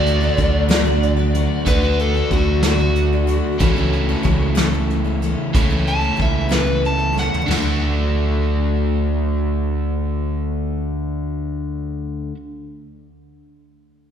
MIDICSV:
0, 0, Header, 1, 6, 480
1, 0, Start_track
1, 0, Key_signature, 2, "major"
1, 0, Tempo, 643777
1, 1235, Time_signature, 6, 3, 24, 8
1, 4120, Tempo, 650054
1, 10459, End_track
2, 0, Start_track
2, 0, Title_t, "Electric slide guitar"
2, 0, Program_c, 0, 29
2, 0, Note_on_c, 0, 74, 91
2, 1211, Note_off_c, 0, 74, 0
2, 1249, Note_on_c, 0, 71, 86
2, 1475, Note_off_c, 0, 71, 0
2, 1498, Note_on_c, 0, 69, 69
2, 1719, Note_off_c, 0, 69, 0
2, 1734, Note_on_c, 0, 66, 74
2, 1957, Note_off_c, 0, 66, 0
2, 1981, Note_on_c, 0, 66, 83
2, 3381, Note_off_c, 0, 66, 0
2, 4382, Note_on_c, 0, 81, 86
2, 4604, Note_off_c, 0, 81, 0
2, 4632, Note_on_c, 0, 76, 68
2, 4848, Note_off_c, 0, 76, 0
2, 4859, Note_on_c, 0, 71, 73
2, 5081, Note_off_c, 0, 71, 0
2, 5107, Note_on_c, 0, 81, 87
2, 5325, Note_off_c, 0, 81, 0
2, 5350, Note_on_c, 0, 78, 79
2, 5567, Note_off_c, 0, 78, 0
2, 10459, End_track
3, 0, Start_track
3, 0, Title_t, "Overdriven electric guitar"
3, 0, Program_c, 1, 29
3, 0, Note_on_c, 1, 50, 74
3, 0, Note_on_c, 1, 57, 74
3, 0, Note_on_c, 1, 62, 80
3, 0, Note_on_c, 1, 66, 75
3, 1214, Note_off_c, 1, 50, 0
3, 1220, Note_off_c, 1, 62, 0
3, 1224, Note_off_c, 1, 66, 0
3, 1244, Note_off_c, 1, 57, 0
3, 2689, Note_on_c, 1, 64, 81
3, 4114, Note_off_c, 1, 64, 0
3, 4146, Note_on_c, 1, 64, 78
3, 5549, Note_on_c, 1, 50, 74
3, 5555, Note_off_c, 1, 64, 0
3, 5569, Note_on_c, 1, 62, 75
3, 5580, Note_on_c, 1, 66, 78
3, 9137, Note_off_c, 1, 50, 0
3, 9157, Note_off_c, 1, 62, 0
3, 9168, Note_off_c, 1, 66, 0
3, 10459, End_track
4, 0, Start_track
4, 0, Title_t, "Steel-string acoustic guitar"
4, 0, Program_c, 2, 25
4, 0, Note_on_c, 2, 57, 42
4, 0, Note_on_c, 2, 62, 45
4, 0, Note_on_c, 2, 66, 50
4, 145, Note_off_c, 2, 66, 0
4, 154, Note_on_c, 2, 66, 48
4, 162, Note_off_c, 2, 62, 0
4, 163, Note_off_c, 2, 57, 0
4, 171, Note_on_c, 2, 62, 50
4, 172, Note_on_c, 2, 57, 41
4, 276, Note_off_c, 2, 66, 0
4, 278, Note_off_c, 2, 62, 0
4, 278, Note_on_c, 2, 54, 47
4, 280, Note_off_c, 2, 57, 0
4, 287, Note_on_c, 2, 62, 60
4, 289, Note_on_c, 2, 57, 49
4, 299, Note_on_c, 2, 66, 55
4, 504, Note_off_c, 2, 54, 0
4, 508, Note_off_c, 2, 57, 0
4, 511, Note_on_c, 2, 50, 84
4, 513, Note_off_c, 2, 66, 0
4, 513, Note_on_c, 2, 54, 87
4, 514, Note_off_c, 2, 62, 0
4, 517, Note_on_c, 2, 57, 90
4, 522, Note_on_c, 2, 66, 79
4, 523, Note_on_c, 2, 62, 90
4, 626, Note_off_c, 2, 66, 0
4, 634, Note_off_c, 2, 50, 0
4, 634, Note_off_c, 2, 54, 0
4, 635, Note_on_c, 2, 66, 55
4, 636, Note_off_c, 2, 57, 0
4, 638, Note_off_c, 2, 62, 0
4, 647, Note_on_c, 2, 62, 58
4, 651, Note_on_c, 2, 57, 47
4, 860, Note_off_c, 2, 66, 0
4, 869, Note_on_c, 2, 66, 50
4, 877, Note_off_c, 2, 62, 0
4, 881, Note_off_c, 2, 57, 0
4, 886, Note_on_c, 2, 62, 41
4, 890, Note_on_c, 2, 57, 39
4, 992, Note_off_c, 2, 66, 0
4, 995, Note_off_c, 2, 57, 0
4, 1000, Note_off_c, 2, 62, 0
4, 1004, Note_on_c, 2, 57, 50
4, 1006, Note_on_c, 2, 54, 56
4, 1011, Note_on_c, 2, 62, 59
4, 1015, Note_on_c, 2, 66, 62
4, 1231, Note_off_c, 2, 57, 0
4, 1232, Note_off_c, 2, 54, 0
4, 1237, Note_off_c, 2, 62, 0
4, 1238, Note_on_c, 2, 50, 65
4, 1239, Note_off_c, 2, 66, 0
4, 1240, Note_on_c, 2, 54, 68
4, 1240, Note_on_c, 2, 57, 79
4, 1246, Note_on_c, 2, 62, 73
4, 1248, Note_on_c, 2, 66, 84
4, 1352, Note_off_c, 2, 66, 0
4, 1356, Note_off_c, 2, 50, 0
4, 1357, Note_off_c, 2, 54, 0
4, 1357, Note_off_c, 2, 57, 0
4, 1360, Note_off_c, 2, 62, 0
4, 1361, Note_on_c, 2, 66, 48
4, 1372, Note_on_c, 2, 62, 45
4, 1379, Note_on_c, 2, 57, 41
4, 1592, Note_off_c, 2, 66, 0
4, 1601, Note_on_c, 2, 66, 44
4, 1603, Note_off_c, 2, 62, 0
4, 1607, Note_off_c, 2, 57, 0
4, 1613, Note_on_c, 2, 62, 40
4, 1622, Note_on_c, 2, 57, 34
4, 1717, Note_off_c, 2, 66, 0
4, 1718, Note_off_c, 2, 57, 0
4, 1724, Note_off_c, 2, 62, 0
4, 1726, Note_on_c, 2, 54, 54
4, 1727, Note_on_c, 2, 57, 52
4, 1734, Note_on_c, 2, 62, 53
4, 1740, Note_on_c, 2, 66, 56
4, 1960, Note_off_c, 2, 54, 0
4, 1961, Note_off_c, 2, 57, 0
4, 1964, Note_off_c, 2, 62, 0
4, 1967, Note_off_c, 2, 66, 0
4, 1973, Note_on_c, 2, 54, 81
4, 1973, Note_on_c, 2, 57, 64
4, 1975, Note_on_c, 2, 50, 67
4, 1980, Note_on_c, 2, 62, 83
4, 1980, Note_on_c, 2, 66, 86
4, 2069, Note_off_c, 2, 66, 0
4, 2077, Note_off_c, 2, 62, 0
4, 2078, Note_on_c, 2, 66, 47
4, 2083, Note_off_c, 2, 54, 0
4, 2084, Note_off_c, 2, 57, 0
4, 2085, Note_off_c, 2, 50, 0
4, 2086, Note_on_c, 2, 62, 43
4, 2094, Note_on_c, 2, 57, 43
4, 2316, Note_off_c, 2, 66, 0
4, 2320, Note_off_c, 2, 62, 0
4, 2324, Note_off_c, 2, 57, 0
4, 2333, Note_on_c, 2, 66, 38
4, 2334, Note_on_c, 2, 62, 35
4, 2347, Note_on_c, 2, 57, 34
4, 2437, Note_off_c, 2, 57, 0
4, 2439, Note_on_c, 2, 54, 51
4, 2441, Note_off_c, 2, 62, 0
4, 2444, Note_off_c, 2, 66, 0
4, 2446, Note_on_c, 2, 57, 50
4, 2450, Note_on_c, 2, 62, 55
4, 2457, Note_on_c, 2, 66, 60
4, 2677, Note_off_c, 2, 54, 0
4, 2679, Note_off_c, 2, 57, 0
4, 2681, Note_on_c, 2, 49, 66
4, 2683, Note_off_c, 2, 62, 0
4, 2684, Note_on_c, 2, 52, 92
4, 2686, Note_off_c, 2, 66, 0
4, 2688, Note_on_c, 2, 57, 72
4, 2689, Note_on_c, 2, 69, 88
4, 2690, Note_on_c, 2, 61, 81
4, 2797, Note_off_c, 2, 69, 0
4, 2799, Note_off_c, 2, 49, 0
4, 2800, Note_off_c, 2, 52, 0
4, 2802, Note_off_c, 2, 57, 0
4, 2803, Note_off_c, 2, 61, 0
4, 2806, Note_on_c, 2, 69, 50
4, 2818, Note_on_c, 2, 61, 49
4, 2823, Note_on_c, 2, 57, 42
4, 3039, Note_off_c, 2, 69, 0
4, 3047, Note_off_c, 2, 61, 0
4, 3048, Note_on_c, 2, 69, 53
4, 3050, Note_off_c, 2, 57, 0
4, 3056, Note_on_c, 2, 61, 50
4, 3070, Note_on_c, 2, 57, 39
4, 3155, Note_off_c, 2, 57, 0
4, 3155, Note_on_c, 2, 52, 62
4, 3156, Note_off_c, 2, 61, 0
4, 3163, Note_off_c, 2, 69, 0
4, 3164, Note_on_c, 2, 57, 67
4, 3165, Note_on_c, 2, 61, 55
4, 3173, Note_on_c, 2, 69, 61
4, 3388, Note_off_c, 2, 52, 0
4, 3391, Note_off_c, 2, 57, 0
4, 3392, Note_on_c, 2, 49, 80
4, 3393, Note_off_c, 2, 61, 0
4, 3397, Note_on_c, 2, 52, 75
4, 3400, Note_on_c, 2, 57, 84
4, 3401, Note_off_c, 2, 69, 0
4, 3402, Note_on_c, 2, 61, 81
4, 3409, Note_on_c, 2, 69, 81
4, 3515, Note_off_c, 2, 49, 0
4, 3518, Note_off_c, 2, 52, 0
4, 3519, Note_off_c, 2, 57, 0
4, 3520, Note_off_c, 2, 61, 0
4, 3521, Note_off_c, 2, 69, 0
4, 3530, Note_on_c, 2, 69, 51
4, 3538, Note_on_c, 2, 61, 46
4, 3544, Note_on_c, 2, 57, 47
4, 3753, Note_off_c, 2, 69, 0
4, 3760, Note_off_c, 2, 61, 0
4, 3762, Note_on_c, 2, 69, 40
4, 3769, Note_on_c, 2, 61, 36
4, 3772, Note_off_c, 2, 57, 0
4, 3780, Note_on_c, 2, 57, 34
4, 3881, Note_off_c, 2, 69, 0
4, 3885, Note_off_c, 2, 61, 0
4, 3890, Note_off_c, 2, 57, 0
4, 3893, Note_on_c, 2, 52, 52
4, 3904, Note_on_c, 2, 57, 52
4, 3906, Note_on_c, 2, 61, 59
4, 3914, Note_on_c, 2, 69, 53
4, 4127, Note_off_c, 2, 52, 0
4, 4132, Note_off_c, 2, 61, 0
4, 4133, Note_off_c, 2, 57, 0
4, 4136, Note_on_c, 2, 49, 70
4, 4138, Note_off_c, 2, 69, 0
4, 4141, Note_on_c, 2, 52, 67
4, 4141, Note_on_c, 2, 61, 73
4, 4144, Note_on_c, 2, 57, 69
4, 4149, Note_on_c, 2, 69, 72
4, 4239, Note_off_c, 2, 69, 0
4, 4245, Note_off_c, 2, 61, 0
4, 4247, Note_on_c, 2, 69, 45
4, 4248, Note_off_c, 2, 49, 0
4, 4250, Note_off_c, 2, 52, 0
4, 4252, Note_off_c, 2, 57, 0
4, 4254, Note_on_c, 2, 61, 41
4, 4266, Note_on_c, 2, 57, 41
4, 4470, Note_off_c, 2, 69, 0
4, 4479, Note_off_c, 2, 61, 0
4, 4479, Note_on_c, 2, 69, 41
4, 4487, Note_on_c, 2, 61, 38
4, 4492, Note_off_c, 2, 57, 0
4, 4500, Note_on_c, 2, 57, 38
4, 4586, Note_off_c, 2, 57, 0
4, 4587, Note_off_c, 2, 61, 0
4, 4588, Note_on_c, 2, 52, 45
4, 4593, Note_off_c, 2, 69, 0
4, 4594, Note_on_c, 2, 57, 49
4, 4596, Note_on_c, 2, 61, 54
4, 4602, Note_on_c, 2, 69, 53
4, 4826, Note_off_c, 2, 52, 0
4, 4831, Note_on_c, 2, 49, 54
4, 4834, Note_off_c, 2, 57, 0
4, 4835, Note_off_c, 2, 61, 0
4, 4835, Note_off_c, 2, 69, 0
4, 4835, Note_on_c, 2, 52, 72
4, 4843, Note_on_c, 2, 57, 68
4, 4844, Note_on_c, 2, 61, 69
4, 4844, Note_on_c, 2, 69, 79
4, 4940, Note_off_c, 2, 69, 0
4, 4949, Note_on_c, 2, 69, 45
4, 4952, Note_off_c, 2, 61, 0
4, 4954, Note_off_c, 2, 49, 0
4, 4956, Note_off_c, 2, 52, 0
4, 4961, Note_off_c, 2, 57, 0
4, 4961, Note_on_c, 2, 61, 40
4, 4969, Note_on_c, 2, 57, 40
4, 5186, Note_off_c, 2, 69, 0
4, 5195, Note_off_c, 2, 61, 0
4, 5195, Note_on_c, 2, 69, 38
4, 5200, Note_off_c, 2, 57, 0
4, 5204, Note_on_c, 2, 61, 32
4, 5209, Note_on_c, 2, 57, 32
4, 5303, Note_off_c, 2, 57, 0
4, 5303, Note_on_c, 2, 52, 43
4, 5310, Note_off_c, 2, 61, 0
4, 5312, Note_on_c, 2, 57, 47
4, 5315, Note_off_c, 2, 69, 0
4, 5319, Note_on_c, 2, 61, 44
4, 5324, Note_on_c, 2, 69, 45
4, 5517, Note_on_c, 2, 50, 57
4, 5550, Note_off_c, 2, 52, 0
4, 5554, Note_off_c, 2, 57, 0
4, 5558, Note_off_c, 2, 61, 0
4, 5560, Note_off_c, 2, 69, 0
4, 5563, Note_on_c, 2, 54, 73
4, 5594, Note_on_c, 2, 57, 63
4, 5637, Note_on_c, 2, 62, 67
4, 5668, Note_on_c, 2, 69, 72
4, 9105, Note_off_c, 2, 50, 0
4, 9152, Note_off_c, 2, 54, 0
4, 9182, Note_off_c, 2, 57, 0
4, 9225, Note_off_c, 2, 62, 0
4, 9256, Note_off_c, 2, 69, 0
4, 10459, End_track
5, 0, Start_track
5, 0, Title_t, "Picked electric bass"
5, 0, Program_c, 3, 34
5, 0, Note_on_c, 3, 38, 93
5, 208, Note_off_c, 3, 38, 0
5, 287, Note_on_c, 3, 38, 80
5, 1090, Note_off_c, 3, 38, 0
5, 1242, Note_on_c, 3, 38, 91
5, 1643, Note_off_c, 3, 38, 0
5, 1721, Note_on_c, 3, 38, 84
5, 2529, Note_off_c, 3, 38, 0
5, 2685, Note_on_c, 3, 37, 95
5, 3087, Note_off_c, 3, 37, 0
5, 3171, Note_on_c, 3, 37, 89
5, 3979, Note_off_c, 3, 37, 0
5, 4138, Note_on_c, 3, 37, 105
5, 4534, Note_off_c, 3, 37, 0
5, 4614, Note_on_c, 3, 37, 65
5, 5416, Note_off_c, 3, 37, 0
5, 5565, Note_on_c, 3, 38, 79
5, 9124, Note_off_c, 3, 38, 0
5, 10459, End_track
6, 0, Start_track
6, 0, Title_t, "Drums"
6, 46, Note_on_c, 9, 42, 52
6, 121, Note_off_c, 9, 42, 0
6, 285, Note_on_c, 9, 42, 47
6, 286, Note_on_c, 9, 36, 63
6, 359, Note_off_c, 9, 42, 0
6, 360, Note_off_c, 9, 36, 0
6, 527, Note_on_c, 9, 38, 111
6, 527, Note_on_c, 9, 42, 78
6, 601, Note_off_c, 9, 38, 0
6, 601, Note_off_c, 9, 42, 0
6, 766, Note_on_c, 9, 42, 51
6, 841, Note_off_c, 9, 42, 0
6, 1003, Note_on_c, 9, 42, 61
6, 1077, Note_off_c, 9, 42, 0
6, 1241, Note_on_c, 9, 42, 79
6, 1243, Note_on_c, 9, 36, 84
6, 1316, Note_off_c, 9, 42, 0
6, 1317, Note_off_c, 9, 36, 0
6, 1485, Note_on_c, 9, 42, 55
6, 1560, Note_off_c, 9, 42, 0
6, 1719, Note_on_c, 9, 42, 52
6, 1722, Note_on_c, 9, 36, 60
6, 1794, Note_off_c, 9, 42, 0
6, 1797, Note_off_c, 9, 36, 0
6, 1958, Note_on_c, 9, 38, 99
6, 1958, Note_on_c, 9, 42, 78
6, 2032, Note_off_c, 9, 38, 0
6, 2032, Note_off_c, 9, 42, 0
6, 2203, Note_on_c, 9, 42, 54
6, 2277, Note_off_c, 9, 42, 0
6, 2447, Note_on_c, 9, 42, 59
6, 2522, Note_off_c, 9, 42, 0
6, 2688, Note_on_c, 9, 36, 81
6, 2688, Note_on_c, 9, 42, 68
6, 2762, Note_off_c, 9, 42, 0
6, 2763, Note_off_c, 9, 36, 0
6, 2931, Note_on_c, 9, 42, 52
6, 3005, Note_off_c, 9, 42, 0
6, 3169, Note_on_c, 9, 36, 65
6, 3171, Note_on_c, 9, 42, 43
6, 3244, Note_off_c, 9, 36, 0
6, 3245, Note_off_c, 9, 42, 0
6, 3408, Note_on_c, 9, 38, 100
6, 3408, Note_on_c, 9, 42, 73
6, 3483, Note_off_c, 9, 38, 0
6, 3483, Note_off_c, 9, 42, 0
6, 3653, Note_on_c, 9, 42, 47
6, 3728, Note_off_c, 9, 42, 0
6, 3893, Note_on_c, 9, 42, 55
6, 3968, Note_off_c, 9, 42, 0
6, 4134, Note_on_c, 9, 42, 66
6, 4135, Note_on_c, 9, 36, 89
6, 4208, Note_off_c, 9, 42, 0
6, 4209, Note_off_c, 9, 36, 0
6, 4373, Note_on_c, 9, 42, 51
6, 4447, Note_off_c, 9, 42, 0
6, 4615, Note_on_c, 9, 36, 63
6, 4623, Note_on_c, 9, 42, 48
6, 4689, Note_off_c, 9, 36, 0
6, 4697, Note_off_c, 9, 42, 0
6, 4851, Note_on_c, 9, 38, 100
6, 4851, Note_on_c, 9, 42, 72
6, 4925, Note_off_c, 9, 38, 0
6, 4925, Note_off_c, 9, 42, 0
6, 5096, Note_on_c, 9, 42, 45
6, 5170, Note_off_c, 9, 42, 0
6, 5337, Note_on_c, 9, 38, 52
6, 5411, Note_off_c, 9, 38, 0
6, 5461, Note_on_c, 9, 43, 64
6, 5535, Note_off_c, 9, 43, 0
6, 5582, Note_on_c, 9, 38, 70
6, 5582, Note_on_c, 9, 43, 78
6, 5582, Note_on_c, 9, 49, 67
6, 5656, Note_off_c, 9, 38, 0
6, 5656, Note_off_c, 9, 43, 0
6, 5656, Note_off_c, 9, 49, 0
6, 10459, End_track
0, 0, End_of_file